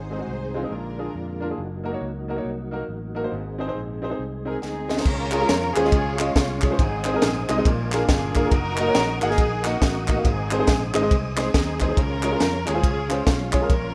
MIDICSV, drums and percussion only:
0, 0, Header, 1, 2, 480
1, 0, Start_track
1, 0, Key_signature, -5, "major"
1, 0, Tempo, 432900
1, 1750, Time_signature, 4, 2, 24, 8
1, 15459, End_track
2, 0, Start_track
2, 0, Title_t, "Drums"
2, 5125, Note_on_c, 9, 38, 50
2, 5235, Note_off_c, 9, 38, 0
2, 5427, Note_on_c, 9, 38, 74
2, 5518, Note_off_c, 9, 38, 0
2, 5518, Note_on_c, 9, 38, 77
2, 5605, Note_on_c, 9, 36, 115
2, 5605, Note_on_c, 9, 49, 106
2, 5629, Note_off_c, 9, 38, 0
2, 5715, Note_off_c, 9, 49, 0
2, 5716, Note_off_c, 9, 36, 0
2, 5891, Note_on_c, 9, 39, 101
2, 5906, Note_on_c, 9, 53, 53
2, 6002, Note_off_c, 9, 39, 0
2, 6017, Note_off_c, 9, 53, 0
2, 6084, Note_on_c, 9, 53, 74
2, 6089, Note_on_c, 9, 38, 122
2, 6195, Note_off_c, 9, 53, 0
2, 6200, Note_off_c, 9, 38, 0
2, 6386, Note_on_c, 9, 39, 96
2, 6391, Note_on_c, 9, 53, 67
2, 6486, Note_on_c, 9, 38, 38
2, 6497, Note_off_c, 9, 39, 0
2, 6501, Note_off_c, 9, 53, 0
2, 6564, Note_on_c, 9, 53, 73
2, 6566, Note_on_c, 9, 36, 123
2, 6597, Note_off_c, 9, 38, 0
2, 6675, Note_off_c, 9, 53, 0
2, 6677, Note_off_c, 9, 36, 0
2, 6863, Note_on_c, 9, 39, 107
2, 6876, Note_on_c, 9, 53, 64
2, 6973, Note_off_c, 9, 39, 0
2, 6987, Note_off_c, 9, 53, 0
2, 7049, Note_on_c, 9, 36, 103
2, 7052, Note_on_c, 9, 38, 111
2, 7056, Note_on_c, 9, 53, 72
2, 7160, Note_off_c, 9, 36, 0
2, 7163, Note_off_c, 9, 38, 0
2, 7167, Note_off_c, 9, 53, 0
2, 7333, Note_on_c, 9, 39, 93
2, 7345, Note_on_c, 9, 53, 63
2, 7352, Note_on_c, 9, 36, 90
2, 7444, Note_off_c, 9, 39, 0
2, 7456, Note_off_c, 9, 53, 0
2, 7463, Note_off_c, 9, 36, 0
2, 7528, Note_on_c, 9, 36, 115
2, 7530, Note_on_c, 9, 53, 71
2, 7639, Note_off_c, 9, 36, 0
2, 7641, Note_off_c, 9, 53, 0
2, 7809, Note_on_c, 9, 39, 101
2, 7826, Note_on_c, 9, 53, 50
2, 7920, Note_off_c, 9, 39, 0
2, 7937, Note_off_c, 9, 53, 0
2, 8003, Note_on_c, 9, 53, 72
2, 8007, Note_on_c, 9, 38, 115
2, 8113, Note_off_c, 9, 53, 0
2, 8118, Note_off_c, 9, 38, 0
2, 8307, Note_on_c, 9, 53, 66
2, 8308, Note_on_c, 9, 39, 91
2, 8418, Note_off_c, 9, 53, 0
2, 8419, Note_off_c, 9, 39, 0
2, 8487, Note_on_c, 9, 36, 127
2, 8490, Note_on_c, 9, 53, 75
2, 8598, Note_off_c, 9, 36, 0
2, 8601, Note_off_c, 9, 53, 0
2, 8781, Note_on_c, 9, 39, 98
2, 8790, Note_on_c, 9, 38, 37
2, 8795, Note_on_c, 9, 53, 59
2, 8892, Note_off_c, 9, 39, 0
2, 8901, Note_off_c, 9, 38, 0
2, 8906, Note_off_c, 9, 53, 0
2, 8966, Note_on_c, 9, 36, 103
2, 8966, Note_on_c, 9, 38, 117
2, 8970, Note_on_c, 9, 53, 72
2, 9077, Note_off_c, 9, 36, 0
2, 9077, Note_off_c, 9, 38, 0
2, 9081, Note_off_c, 9, 53, 0
2, 9260, Note_on_c, 9, 39, 92
2, 9262, Note_on_c, 9, 53, 63
2, 9269, Note_on_c, 9, 36, 83
2, 9371, Note_off_c, 9, 39, 0
2, 9373, Note_off_c, 9, 53, 0
2, 9380, Note_off_c, 9, 36, 0
2, 9439, Note_on_c, 9, 53, 73
2, 9442, Note_on_c, 9, 36, 119
2, 9550, Note_off_c, 9, 53, 0
2, 9553, Note_off_c, 9, 36, 0
2, 9726, Note_on_c, 9, 39, 99
2, 9739, Note_on_c, 9, 53, 52
2, 9837, Note_off_c, 9, 39, 0
2, 9850, Note_off_c, 9, 53, 0
2, 9918, Note_on_c, 9, 53, 72
2, 9922, Note_on_c, 9, 38, 113
2, 10029, Note_off_c, 9, 53, 0
2, 10033, Note_off_c, 9, 38, 0
2, 10219, Note_on_c, 9, 53, 65
2, 10221, Note_on_c, 9, 39, 94
2, 10321, Note_on_c, 9, 38, 41
2, 10330, Note_off_c, 9, 53, 0
2, 10332, Note_off_c, 9, 39, 0
2, 10398, Note_on_c, 9, 53, 74
2, 10401, Note_on_c, 9, 36, 118
2, 10432, Note_off_c, 9, 38, 0
2, 10508, Note_off_c, 9, 53, 0
2, 10512, Note_off_c, 9, 36, 0
2, 10692, Note_on_c, 9, 39, 104
2, 10705, Note_on_c, 9, 38, 35
2, 10710, Note_on_c, 9, 53, 63
2, 10802, Note_off_c, 9, 39, 0
2, 10816, Note_off_c, 9, 38, 0
2, 10821, Note_off_c, 9, 53, 0
2, 10884, Note_on_c, 9, 36, 99
2, 10885, Note_on_c, 9, 38, 108
2, 10889, Note_on_c, 9, 53, 75
2, 10995, Note_off_c, 9, 36, 0
2, 10996, Note_off_c, 9, 38, 0
2, 11000, Note_off_c, 9, 53, 0
2, 11173, Note_on_c, 9, 39, 89
2, 11180, Note_on_c, 9, 53, 66
2, 11186, Note_on_c, 9, 36, 82
2, 11284, Note_off_c, 9, 39, 0
2, 11291, Note_off_c, 9, 53, 0
2, 11297, Note_off_c, 9, 36, 0
2, 11362, Note_on_c, 9, 36, 113
2, 11363, Note_on_c, 9, 53, 72
2, 11473, Note_off_c, 9, 36, 0
2, 11474, Note_off_c, 9, 53, 0
2, 11652, Note_on_c, 9, 39, 101
2, 11659, Note_on_c, 9, 53, 51
2, 11763, Note_off_c, 9, 39, 0
2, 11770, Note_off_c, 9, 53, 0
2, 11833, Note_on_c, 9, 53, 75
2, 11837, Note_on_c, 9, 38, 116
2, 11840, Note_on_c, 9, 36, 95
2, 11944, Note_off_c, 9, 53, 0
2, 11948, Note_off_c, 9, 38, 0
2, 11951, Note_off_c, 9, 36, 0
2, 12133, Note_on_c, 9, 39, 95
2, 12141, Note_on_c, 9, 53, 71
2, 12244, Note_off_c, 9, 39, 0
2, 12251, Note_off_c, 9, 53, 0
2, 12320, Note_on_c, 9, 36, 127
2, 12323, Note_on_c, 9, 53, 75
2, 12431, Note_off_c, 9, 36, 0
2, 12434, Note_off_c, 9, 53, 0
2, 12608, Note_on_c, 9, 39, 103
2, 12628, Note_on_c, 9, 38, 36
2, 12633, Note_on_c, 9, 53, 58
2, 12719, Note_off_c, 9, 39, 0
2, 12739, Note_off_c, 9, 38, 0
2, 12744, Note_off_c, 9, 53, 0
2, 12799, Note_on_c, 9, 36, 103
2, 12799, Note_on_c, 9, 38, 118
2, 12803, Note_on_c, 9, 53, 73
2, 12909, Note_off_c, 9, 38, 0
2, 12910, Note_off_c, 9, 36, 0
2, 12914, Note_off_c, 9, 53, 0
2, 13085, Note_on_c, 9, 39, 89
2, 13092, Note_on_c, 9, 53, 61
2, 13100, Note_on_c, 9, 36, 80
2, 13196, Note_off_c, 9, 39, 0
2, 13203, Note_off_c, 9, 53, 0
2, 13211, Note_off_c, 9, 36, 0
2, 13275, Note_on_c, 9, 36, 120
2, 13276, Note_on_c, 9, 53, 70
2, 13386, Note_off_c, 9, 36, 0
2, 13387, Note_off_c, 9, 53, 0
2, 13556, Note_on_c, 9, 39, 92
2, 13574, Note_on_c, 9, 53, 48
2, 13667, Note_off_c, 9, 39, 0
2, 13685, Note_off_c, 9, 53, 0
2, 13751, Note_on_c, 9, 53, 74
2, 13755, Note_on_c, 9, 38, 121
2, 13862, Note_off_c, 9, 53, 0
2, 13866, Note_off_c, 9, 38, 0
2, 14051, Note_on_c, 9, 39, 84
2, 14055, Note_on_c, 9, 53, 66
2, 14162, Note_off_c, 9, 39, 0
2, 14166, Note_off_c, 9, 53, 0
2, 14232, Note_on_c, 9, 36, 114
2, 14233, Note_on_c, 9, 53, 75
2, 14343, Note_off_c, 9, 36, 0
2, 14344, Note_off_c, 9, 53, 0
2, 14529, Note_on_c, 9, 39, 107
2, 14539, Note_on_c, 9, 53, 58
2, 14640, Note_off_c, 9, 39, 0
2, 14650, Note_off_c, 9, 53, 0
2, 14710, Note_on_c, 9, 36, 95
2, 14710, Note_on_c, 9, 38, 115
2, 14714, Note_on_c, 9, 53, 74
2, 14821, Note_off_c, 9, 36, 0
2, 14821, Note_off_c, 9, 38, 0
2, 14825, Note_off_c, 9, 53, 0
2, 14997, Note_on_c, 9, 39, 91
2, 15003, Note_on_c, 9, 53, 63
2, 15012, Note_on_c, 9, 36, 82
2, 15108, Note_off_c, 9, 39, 0
2, 15114, Note_off_c, 9, 53, 0
2, 15123, Note_off_c, 9, 36, 0
2, 15187, Note_on_c, 9, 36, 125
2, 15188, Note_on_c, 9, 53, 72
2, 15298, Note_off_c, 9, 36, 0
2, 15299, Note_off_c, 9, 53, 0
2, 15459, End_track
0, 0, End_of_file